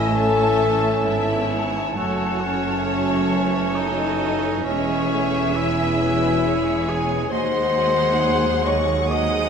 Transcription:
Already playing: A1 A2 E3 A3 C#4 E4 A4 D#5 E5 A5
0.13 A3 C#4 A4 C#5 E5 A5
0.59 E5
1.06 G#1 G#2 B3 E4 E5
1.53 C#5
1.96 F#1 F#2 E3 A3 C#4 F#4 A4 C#5 F#5
2.40 C#4 C#5
2.86 F#4 A4
3.31 B4
3.74 F#3 D#4 A4 C#5 D#5
4.19 D#5
4.65 E1 E2 G#3 C#4 G#4 C#5 E5 G#5
5.10 A3
5.54 G#3 E4 C#5 E5
6.00 F#3 B4
6.45 G#3 G#4 C#5
6.89 G#4 C#5 G#5
7.30 D#2 F#3 G#3 G#4 C5 D#5 F#5 G#5 C6
7.75 F#3 G#5
8.20 F#3 F#5 G#5
8.63 F#3 C#5 D#5 G#5 C#6
9.09 F#3 G#3 G#4 C5 D#5 F#5 G#5 D#6

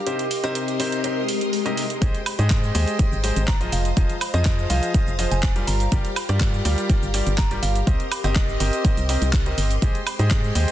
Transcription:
Already playing: G4 F5 D6
0.06 C3 C4 D#4 G4 A#4 C5 D#5 C6, closed hi-hat
0.19 closed hi-hat
0.31 open hi-hat
0.44 C3 D#4 G4 A#4 C5 D#5, closed hi-hat
0.55 closed hi-hat
0.68 closed hi-hat
0.80 C3 D#4 G4 A#4 C5, open hi-hat
0.92 closed hi-hat
1.04 C3 D#4 G4 A#4 C5, closed hi-hat, swell
1.29 open hi-hat
1.41 closed hi-hat
1.53 open hi-hat
1.66 C3 D#4 G4 A#4 D#5, closed hi-hat
1.77 open hi-hat
1.90 closed hi-hat
2.01 G#1 G#3 G4 G#4 C5 D#5 G5 C6, kick, closed hi-hat, cabasa
2.15 closed hi-hat
2.23 D#5, open hi-hat, cabasa, high woodblock
2.39 G#2 G#3 G4 G#4 C5 D#5, closed hi-hat, cabasa
2.50 kick, clap, closed hi-hat, cabasa
2.64 cabasa
2.75 D#2 G#3 G4 G#4 C5 D#5 A#5, open hi-hat, cabasa
2.88 closed hi-hat, cabasa
2.99 G4 G#4 C5 D#5, kick, closed hi-hat, cabasa
3.12 G#1, cabasa
3.24 G#3 G4 G#4 C5 D#5, open hi-hat, cabasa
3.36 G#1, closed hi-hat, cabasa
3.48 A#5, kick, clap, closed hi-hat, cabasa
3.61 F3 F4 G#4 C5 D#5, closed hi-hat
3.72 F1 F4 F5 D#6, open hi-hat, cabasa
3.85 closed hi-hat, cabasa
3.97 F1 F3 F4 G#4 C5 D#5, kick, closed hi-hat, cabasa
4.09 closed hi-hat
4.21 open hi-hat, cabasa, high woodblock
4.34 F2 F3 F4 G#4 C5 D#5, closed hi-hat, cabasa
4.40 C5
4.45 kick, clap, closed hi-hat, cabasa
4.59 F5, cabasa
4.70 C2 F3 F4 G#4 C5 D#5 F5, open hi-hat, cabasa
4.83 closed hi-hat, cabasa
4.94 F3 F4 G#4 C5 D#5, kick, closed hi-hat, cabasa
5.07 F1, cabasa
5.19 F3 F4 G#4 C5 D#5, open hi-hat, cabasa
5.31 F1 G#5, closed hi-hat, cabasa
5.43 kick, clap, closed hi-hat, cabasa
5.56 G3 F4 G4 A#4 D5, closed hi-hat
5.67 G1 G4 A#5, open hi-hat, cabasa
5.80 closed hi-hat, cabasa
5.92 G1 G3 F4 G4 A#4 D5, kick, closed hi-hat, cabasa
6.05 closed hi-hat
6.14 D6, open hi-hat, cabasa, high woodblock
6.29 G2 G3 F4 G4 A#4 D5, closed hi-hat, cabasa
6.40 kick, clap, closed hi-hat, cabasa
6.54 cabasa
6.65 D2 G3 F4 G4 A#4 D5, open hi-hat, cabasa
6.78 closed hi-hat, cabasa
6.90 G3 F4 G4 A#4 D5, kick, closed hi-hat, cabasa
7.02 G1, cabasa
7.14 G3 F4 G4 A#4 D5, open hi-hat, cabasa
7.27 G1, closed hi-hat, cabasa
7.38 A#5, kick, clap, closed hi-hat, cabasa
7.51 G3 F4 G4 A#4 D5, closed hi-hat
7.62 G1 F5, open hi-hat, cabasa
7.76 closed hi-hat, cabasa
7.87 C2 C4 G4 A#4 C5 D#5 C6, kick, closed hi-hat, cabasa
8.00 closed hi-hat
8.12 open hi-hat, cabasa, high woodblock
8.24 G1 C4 G4 A#4 C5 D#5, closed hi-hat, cabasa
8.35 kick, clap, closed hi-hat, cabasa
8.49 cabasa
8.60 G1 C4 G4 A#4 C5 D#5, open hi-hat, cabasa
8.73 closed hi-hat, cabasa
8.85 C4 G4 A#4, kick, closed hi-hat, cabasa
8.97 C2, closed hi-hat, cabasa
9.09 C4 G4 A#4 C5 D#5, open hi-hat, cabasa
9.22 C2, closed hi-hat, cabasa
9.33 kick, clap, closed hi-hat, cabasa
9.46 C4 G4 A#4 C5 D#5, closed hi-hat
9.58 G1, open hi-hat, cabasa
9.71 closed hi-hat, cabasa
9.82 G#1 G#3 G4 G#4 C5 D#5 G5, kick, closed hi-hat, cabasa
9.92 D#5, closed hi-hat
10.07 open hi-hat, cabasa, high woodblock
10.19 G#2 G#3 G4 G#4 C5 D#5, closed hi-hat, cabasa
10.30 kick, clap, closed hi-hat, cabasa
10.44 cabasa
10.55 D#2 G#3 G4 G#4 C5 D#5 A#5, open hi-hat, cabasa
10.68 closed hi-hat, cabasa

